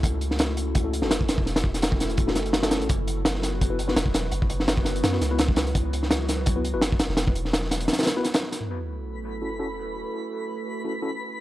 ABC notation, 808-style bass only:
X:1
M:4/4
L:1/16
Q:"Swing 16ths" 1/4=168
K:F#m
V:1 name="808-style bass" clef=bass
C,,8- C,,3 F,,,4 E,,,- | E,,,8- E,,,2 F,,,4- F,,, A,,, | F,,,12 E,,,4 | F,,,8 F,,2 C,,6- |
C,,8- C,,3 F,,,4 E,,,- | E,,,8 z8 | z16 | z16 |]